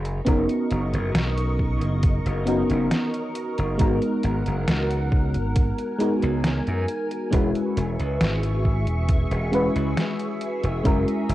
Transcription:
Already playing: F#1 A#4 D#5 C#6
0.05 closed hi-hat
0.25 F#1 B3 C#4 D#4 F#4 A#4, kick, closed hi-hat
0.49 closed hi-hat
0.71 F#1, closed hi-hat
0.93 F#1, closed hi-hat
1.15 B1, snare, closed hi-hat
1.38 closed hi-hat
1.59 kick
1.82 F#1, closed hi-hat
2.03 kick, closed hi-hat
2.26 F#1, closed hi-hat
2.46 B3 C#4 D#4 F#4 A#4, closed hi-hat
2.70 F#1, closed hi-hat
2.91 snare, closed hi-hat
3.14 closed hi-hat
3.35 closed hi-hat
3.58 F#1, closed hi-hat
3.77 G#1 G#3 B3 D#4 F#4 A#4 F#5, kick, closed hi-hat
4.02 closed hi-hat
4.23 G#1, closed hi-hat
4.46 F#1, closed hi-hat
4.68 C#2, snare, closed hi-hat
4.91 closed hi-hat
5.12 kick
5.35 G#1, closed hi-hat
5.56 G#5, kick, closed hi-hat
5.79 closed hi-hat
5.99 G#3 B3 D#4 F#4 A#4, closed hi-hat
6.23 C#2, closed hi-hat
6.44 snare, closed hi-hat
6.67 F#2, closed hi-hat
6.88 closed hi-hat
7.11 closed hi-hat
7.30 E1 G#3 C#4 E4 F#4 G#4 B4 E5 C#6, kick, closed hi-hat
7.55 closed hi-hat
7.77 E1, closed hi-hat
7.99 C#2, closed hi-hat
8.21 G#1, snare, closed hi-hat
8.43 closed hi-hat
8.65 kick
8.87 E1, closed hi-hat
9.09 kick, closed hi-hat
9.31 E1, closed hi-hat
9.51 G#3 C#4 E4 F#4 B4, closed hi-hat
9.75 C#2, closed hi-hat
9.97 snare, closed hi-hat
10.19 closed hi-hat
10.41 closed hi-hat
10.64 E1, closed hi-hat
10.84 F#1 G#3 C#4 E4 F#4 A#4 A#5, kick, closed hi-hat
11.08 closed hi-hat
11.29 F#1, closed hi-hat

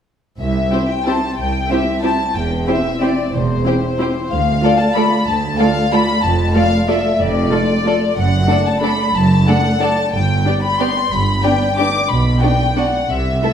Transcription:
0.40 C2 E5
0.72 C4 E4 G4 C5
0.89 G5
1.05 C4 E4 G4 C5 A5
1.38 C2 G5
1.69 C4 E4 G4 C5 E5
2.03 C4 E4 G4 C5 A5
2.35 E1 E2 G5
2.67 C4 E4 G4 C5 E5
3.01 C4 E4 G4 C5 D5
3.33 E1 E2 C5
3.65 C4 E4 G4 C5
3.99 C4 E4 G4 C5
4.30 D2 F5
4.62 A3 F4 A4 D5
4.78 A5
4.95 A3 F4 A4 D5 B5
5.27 D2 A5
5.59 A3 F4 A4 D5 F5
5.91 A3 F4 A4 D5 B5
6.23 F1 F2 A5
6.54 A3 F4 A4 D5 F5
6.88 A3 F4 A4 D5 E5
7.20 F1 F2 D5
7.51 A3 F4 A4 D5
7.85 A3 F4 A4 D5
8.17 F#1 F#2 F#5
8.47 A3 D4 A4 D5
8.67 A5
8.81 A3 D4 A4 D5 B5
9.15 F#1 F#2 A5
9.47 A3 D4 A4 D5 F#5
9.80 A3 D4 A4 D5 A5
10.13 G1 G2 G5
10.45 B3 D4 G4 D5
10.63 B5
10.79 B3 D4 G4 D5 C6
11.11 G1 G2 B5
11.43 B3 D4 G4 D5 G5
11.77 B3 D4 G4 D5 D6
12.09 B1 B2 B5
12.41 B3 D4 F#4 D5 G5
12.76 B3 D4 F#4 D5 F#5
13.10 C2 C3 E5
13.42 A3 E4 A4 E5

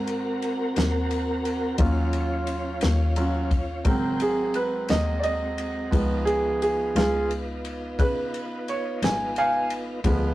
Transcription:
Already playing: G#2 C4 F#4 A#4
0.07 ride
0.42 ride
0.76 D#2, snare, ride
1.11 ride
1.45 ride
1.78 D#2 F#3 C#4 F4, kick, ride
2.13 ride
2.47 ride
2.81 D#2, snare, ride
3.16 F#3 C#4 F4, ride
3.51 kick, ride
3.84 G#1 C#3 F#3 C4 A#4 G5, kick, ride
4.20 G#3 C4 F#4 G#4, ride
4.54 B4, ride
4.89 D#2 D#5, snare, ride
5.20 D5 D#5, ride
5.58 ride
5.91 C#2 D#3 F3 B3 D#4 F4, kick, ride
6.25 G#4, ride
6.62 G#4, ride
6.96 C#2 F4 G#4, snare, ride
7.31 ride
7.65 ride
7.99 C#3 B4, kick, ride
8.34 ride
8.68 C#5, ride
9.02 G#1 G#5, snare, ride
9.36 F5 G#5, ride
9.70 ride
10.04 D2 F3 G#3 B3 F4, kick, ride

